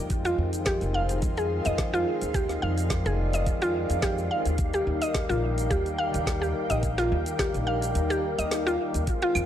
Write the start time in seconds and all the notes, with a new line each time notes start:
Already playing: F2 D#4
0.09 D#3 G#3 C4 F4 G#4 C5 F5, kick, closed hi-hat, shaker
0.25 F4, closed hi-hat, shaker
0.38 F2
0.51 D#3 G#3 C4, closed hi-hat, shaker
0.55 F4
0.66 G4, kick, snare, closed hi-hat, shaker
0.81 F1, closed hi-hat, shaker
0.94 F5
1.09 closed hi-hat, shaker
1.22 F2, kick, closed hi-hat, shaker
1.37 G#4, closed hi-hat, shaker
1.49 D#3 G#3 C4 F4
1.65 F2 D#5, closed hi-hat, shaker
1.78 kick, snare, closed hi-hat, shaker
1.94 F4, shaker
2.21 D#2, closed hi-hat, shaker
2.34 D#3 G#3 C4 F4 G4 D5, kick, closed hi-hat, shaker
2.49 snare, closed hi-hat, shaker
2.62 F2 F5
2.76 D#3 G#3 C4, closed hi-hat, shaker
2.80 F4
2.90 kick, snare, closed hi-hat, shaker
3.06 F1 G#4, closed hi-hat, shaker
3.33 D#5, closed hi-hat, shaker
3.46 F2, kick, closed hi-hat, shaker
3.62 F4, closed hi-hat, shaker
3.90 F2, closed hi-hat, shaker
4.02 G4, kick, snare, closed hi-hat, shaker
4.18 shaker
4.29 D#3 G#3 C4 F4 F5
4.46 D#2, closed hi-hat, shaker
4.58 D#3 G3 A#3 G4 A#4 G5, kick, closed hi-hat, shaker
4.74 G4, closed hi-hat, shaker
4.87 D#2
5.00 D#3 G3 A#3 D#5, closed hi-hat, shaker
5.04 G4
5.14 kick, snare, closed hi-hat, shaker
5.29 A#1 F4, closed hi-hat, shaker
5.58 closed hi-hat, shaker
5.71 D#2 G4, kick, closed hi-hat, shaker
5.86 closed hi-hat, shaker
5.97 D#3 G3 A#3 F5
6.01 G4
6.14 D#2, closed hi-hat, shaker
6.27 kick, snare, closed hi-hat, shaker
6.42 G4, shaker
6.70 A#1 D#5, closed hi-hat, shaker
6.82 D#3 G3 A#3 G4, kick, closed hi-hat, shaker
6.98 F4, snare, closed hi-hat, shaker
7.12 D#2
7.24 D#3 G3 A#3 G4, closed hi-hat, shaker
7.39 G4, kick, snare, closed hi-hat, shaker
7.54 A#1, closed hi-hat, shaker
7.67 F5
7.82 closed hi-hat, shaker
7.95 D#2, closed hi-hat, shaker
8.10 G4, closed hi-hat, shaker
8.39 D#2 D#5, closed hi-hat, shaker
8.51 snare, closed hi-hat, shaker
8.67 F4, shaker
8.78 D#3 G3 A#3 G4
8.94 D#2, closed hi-hat, shaker
9.07 D#3 G#3 C4 D#4 F4 G#4 C5 F5, kick, closed hi-hat, shaker
9.22 F4, closed hi-hat
9.35 F2, claves, shaker